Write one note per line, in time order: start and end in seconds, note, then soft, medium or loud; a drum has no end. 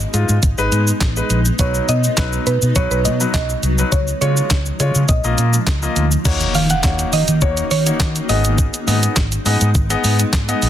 0.00 1.57 G#3 medium
0.00 3.88 B3 medium
0.00 3.88 D#4 medium
0.00 0.97 D#5 medium
0.00 shaker medium
0.13 0.24 G#2 loud
0.13 0.36 G#3 medium
0.13 0.36 D#4 medium
0.13 0.36 F4 medium
0.13 closed hi-hat medium
0.13 shaker medium
0.29 0.38 G#2 medium
0.29 shaker medium
0.43 0.53 G#1 loud
0.43 kick loud
0.43 closed hi-hat medium
0.43 shaker medium
0.58 0.67 G#1 medium
0.58 0.87 G#3 medium
0.58 0.88 D#4 medium
0.58 0.88 B4 loud
0.58 shaker soft
0.72 0.91 G#2 loud
0.72 closed hi-hat medium
0.72 shaker medium
0.88 shaker medium
1.01 1.20 A1 medium
1.01 kick loud
1.01 snare medium
1.01 clap loud
1.01 closed hi-hat medium
1.01 shaker medium
1.16 1.38 G#3 medium
1.16 1.38 D#4 medium
1.16 1.38 B4 medium
1.16 shaker medium
1.30 1.49 A#1 medium
1.30 closed hi-hat medium
1.30 shaker medium
1.45 shaker medium
1.59 1.78 B1 loud
1.59 3.90 F#3 medium
1.59 1.89 F#3 medium
1.59 1.89 D#4 medium
1.59 1.89 B4 medium
1.59 1.90 C#5 loud
1.59 kick loud
1.59 closed hi-hat medium
1.59 shaker medium
1.75 shaker medium
1.88 2.07 B2 loud
1.88 2.49 D#5 loud
1.88 closed hi-hat medium
1.88 shaker medium
2.04 shaker medium
2.17 2.37 B1 loud
2.17 2.47 F#3 medium
2.17 2.47 D#4 medium
2.17 2.47 B4 medium
2.17 kick loud
2.17 snare loud
2.17 clap loud
2.17 closed hi-hat medium
2.17 shaker medium
2.33 shaker medium
2.47 2.57 B2 loud
2.47 2.77 B4 medium
2.47 closed hi-hat medium
2.47 shaker medium
2.62 2.71 B2 medium
2.62 shaker medium
2.76 2.86 B1 loud
2.76 2.98 F#3 medium
2.76 2.98 D#4 medium
2.76 2.98 B4 medium
2.76 2.92 C#5 loud
2.76 kick loud
2.76 closed hi-hat medium
2.76 shaker medium
2.91 3.06 B1 loud
2.91 3.05 B4 medium
2.91 shaker soft
3.05 3.24 B2 medium
3.05 3.32 D#5 loud
3.05 closed hi-hat medium
3.05 shaker medium
3.20 3.50 F#3 medium
3.20 3.50 D#4 medium
3.20 3.50 B4 medium
3.20 shaker medium
3.34 3.53 B1 medium
3.34 3.94 D#5 loud
3.34 kick loud
3.34 snare medium
3.34 clap loud
3.34 closed hi-hat medium
3.34 shaker medium
3.50 shaker medium
3.63 3.82 C2 medium
3.63 closed hi-hat medium
3.63 shaker medium
3.78 3.92 F#3 medium
3.78 3.92 D#4 medium
3.78 3.93 B4 medium
3.78 shaker medium
3.92 4.11 C#2 loud
3.92 6.23 F3 medium
3.92 4.19 C#5 loud
3.92 kick loud
3.92 closed hi-hat medium
3.92 shaker medium
4.08 shaker medium
4.21 4.40 C#3 loud
4.21 4.51 G#3 medium
4.21 4.51 F4 medium
4.21 5.05 C#5 loud
4.21 4.51 C#5 medium
4.21 closed hi-hat medium
4.21 shaker medium
4.37 shaker medium
4.50 4.70 C#2 medium
4.50 kick loud
4.50 snare loud
4.50 clap loud
4.50 closed hi-hat medium
4.50 shaker medium
4.66 shaker medium
4.80 4.90 C#3 loud
4.80 5.02 G#3 medium
4.80 5.02 F4 medium
4.80 5.02 C#5 medium
4.80 closed hi-hat medium
4.80 shaker medium
4.95 5.04 C#3 medium
4.95 shaker medium
5.09 5.19 A#1 loud
5.09 5.92 D#5 medium
5.09 kick loud
5.09 closed hi-hat medium
5.09 shaker medium
5.24 5.33 A#1 loud
5.24 5.54 A#3 medium
5.24 5.54 F4 medium
5.24 5.54 D#5 medium
5.24 shaker soft
5.38 5.57 A#2 medium
5.38 closed hi-hat medium
5.38 shaker medium
5.54 shaker medium
5.67 5.86 C#2 loud
5.67 kick loud
5.67 snare medium
5.67 clap loud
5.67 closed hi-hat medium
5.67 shaker medium
5.82 6.04 A#3 medium
5.82 6.04 F4 medium
5.82 6.04 D#5 medium
5.82 shaker medium
5.96 6.15 D2 loud
5.96 closed hi-hat medium
5.96 shaker soft
6.12 shaker medium
6.25 6.44 D#2 loud
6.25 8.28 D#3 medium
6.25 6.55 A#3 medium
6.25 8.27 A#3 medium
6.25 8.27 C#4 medium
6.25 6.55 D#4 medium
6.25 8.27 D#4 medium
6.25 6.55 F#4 medium
6.25 8.27 F#4 medium
6.25 6.55 C#5 loud
6.25 kick loud
6.25 crash loud
6.25 impact medium
6.25 shaker medium
6.41 closed hi-hat medium
6.41 shaker medium
6.55 6.74 D#3 loud
6.55 6.71 F5 loud
6.55 open hi-hat medium
6.55 shaker medium
6.70 7.10 F#5 loud
6.70 closed hi-hat medium
6.70 shaker medium
6.83 7.03 D#2 loud
6.83 7.13 A#3 medium
6.83 7.13 D#4 medium
6.83 7.13 F#4 medium
6.83 7.13 C#5 medium
6.83 kick loud
6.83 snare loud
6.83 clap loud
6.83 shaker medium
6.99 closed hi-hat medium
6.99 shaker medium
7.13 7.23 D#3 loud
7.13 7.40 D#5 loud
7.13 open hi-hat medium
7.13 shaker medium
7.28 7.43 D#3 medium
7.28 closed hi-hat medium
7.28 shaker medium
7.41 7.61 D#2 loud
7.41 7.64 A#3 medium
7.41 7.64 D#4 medium
7.41 7.64 F#4 medium
7.41 7.69 C#5 medium
7.41 7.64 C#5 medium
7.41 kick loud
7.41 shaker medium
7.57 closed hi-hat soft
7.57 shaker soft
7.71 7.90 D#3 loud
7.71 8.25 C#5 loud
7.71 open hi-hat medium
7.71 shaker medium
7.86 8.15 A#3 medium
7.86 8.16 D#4 medium
7.86 8.16 F#4 medium
7.86 8.16 C#5 medium
7.86 closed hi-hat medium
7.86 shaker medium
8.00 8.19 D#3 loud
8.00 kick loud
8.00 snare medium
8.00 clap loud
8.00 shaker medium
8.16 closed hi-hat medium
8.16 shaker medium
8.29 8.67 G#1 loud
8.29 10.69 G#3 medium
8.29 8.76 B3 medium
8.29 10.69 B3 medium
8.29 8.76 D#4 medium
8.29 10.69 D#4 medium
8.29 8.77 G#4 medium
8.29 10.58 D#5 medium
8.29 8.77 D#5 medium
8.29 open hi-hat medium
8.29 shaker medium
8.45 closed hi-hat medium
8.45 shaker medium
8.58 kick loud
8.58 shaker medium
8.74 closed hi-hat medium
8.74 shaker medium
8.87 9.06 G#2 medium
8.87 9.17 B3 medium
8.87 9.17 D#4 medium
8.87 9.17 G#4 medium
8.87 9.17 D#5 medium
8.87 open hi-hat medium
8.87 shaker medium
9.03 closed hi-hat medium
9.03 shaker medium
9.16 9.36 G#1 loud
9.16 kick loud
9.16 snare loud
9.16 clap loud
9.16 shaker medium
9.32 closed hi-hat medium
9.32 shaker medium
9.45 9.56 G#2 medium
9.45 9.68 B3 medium
9.45 9.68 D#4 medium
9.45 9.68 G#4 medium
9.45 9.68 D#5 loud
9.45 open hi-hat medium
9.45 shaker medium
9.61 9.76 G#2 medium
9.61 closed hi-hat medium
9.61 shaker medium
9.75 9.94 G#1 loud
9.75 kick loud
9.75 shaker medium
9.90 10.19 B3 loud
9.90 10.19 D#4 medium
9.90 10.20 G#4 medium
9.90 10.20 D#5 loud
9.90 closed hi-hat medium
9.90 shaker medium
10.04 10.23 G#2 loud
10.04 open hi-hat medium
10.04 shaker medium
10.20 closed hi-hat medium
10.20 shaker medium
10.33 10.52 G#2 loud
10.33 kick loud
10.33 snare medium
10.33 clap loud
10.33 shaker medium
10.48 10.69 B3 medium
10.48 10.69 D#4 medium
10.48 10.69 G#4 medium
10.48 10.69 D#5 loud
10.48 closed hi-hat medium
10.48 shaker medium
10.62 10.69 A#1 medium
10.62 open hi-hat medium
10.62 shaker medium